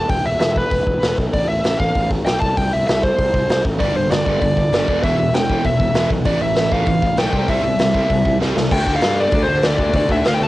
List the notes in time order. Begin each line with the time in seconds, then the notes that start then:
0.09 E1 G5, kick, open hi-hat
0.25 E1 E5
0.40 E1 E5, snare, open hi-hat
0.56 B4, kick
0.71 E1, kick, open hi-hat
0.87 E1, kick
1.02 E1, snare, open hi-hat
1.18 B1, kick
1.33 A1 D5, kick, open hi-hat
1.48 A1 E5
1.64 A1, snare, open hi-hat
1.80 A1 F5, kick
1.95 A1, kick, open hi-hat
2.11 kick
2.26 B1 G5, snare, open hi-hat
2.40 C2 A5, kick
2.57 C2 G5, kick, open hi-hat
2.73 C2 E5
2.87 C2 E5, snare, open hi-hat
3.03 C5, kick
3.19 C2, kick, open hi-hat
3.34 C2, kick
3.49 C2, snare, open hi-hat
3.65 A1, kick
3.80 G1 G2 D3 G3 D5, kick, open hi-hat
3.96 G1 G2 D3 C5
4.11 G1 G2 D3 D5, snare, open hi-hat
4.26 G1 G2 D3 G3 D5, kick
4.40 G1 G2 D3 D5, kick, open hi-hat
4.57 G2 D3, kick
4.72 G1 G2 D3 G3, snare, open hi-hat
4.88 E1 E2 B2 E3, kick
5.03 E1 E2 B2 E3 E5, kick, open hi-hat
5.18 E1 E2 B2
5.33 E1 E2 B2 G5, snare, open hi-hat
5.49 E2 B2 E3, kick
5.64 E1 E2 B2 E5, kick, open hi-hat
5.80 E1 E2 B2, kick
5.94 E1 E2 B2 E3, snare, open hi-hat
6.10 B1 E2 B2, kick
6.25 A1 A2 E3 A3 D5, kick, open hi-hat
6.41 A1 A2 E3 E5
6.56 A1 A2 E3, snare, open hi-hat
6.72 A1 A2 E3 A3 F5, kick
6.86 A1 A2 E3, kick, open hi-hat
7.02 A2 E3, kick
7.17 B1 A2 E3 A3 G5, snare, open hi-hat
7.33 C2 C3 G3 C4 G5, kick
7.48 C2 C3 G3 C4 E5, kick, open hi-hat
7.63 C2 C3 G3
7.79 C2 C3 G3, snare, open hi-hat
7.94 C3 G3 C4, kick
8.09 C2 C3 G3, kick, open hi-hat
8.25 C2 C3 G3, kick
8.40 C2 C3 G3 C4, snare
8.56 C2 C3 G3, snare
8.71 D2 D3 A3 D4 G5, kick, crash
8.87 D2 D3 A3 D4, kick
8.96 F5
9.01 G2 D3 A3 D4, snare, open hi-hat
9.16 D3 A3 D4 D5
9.31 D2 D3 A3 D4, kick, open hi-hat
9.43 C5
9.47 D2 D3 A3 D4
9.62 D2 D3 A3 D4 D5, snare, open hi-hat
9.78 D2 D3 A3 D4, kick
9.93 D2 D3 A3 D4 D5, kick, open hi-hat
10.09 D2 D3 A3 D4 E5, kick
10.24 D2 D3 A3 D4 F5, snare, open hi-hat
10.34 G5
10.40 D2 D3 A3 D4 A5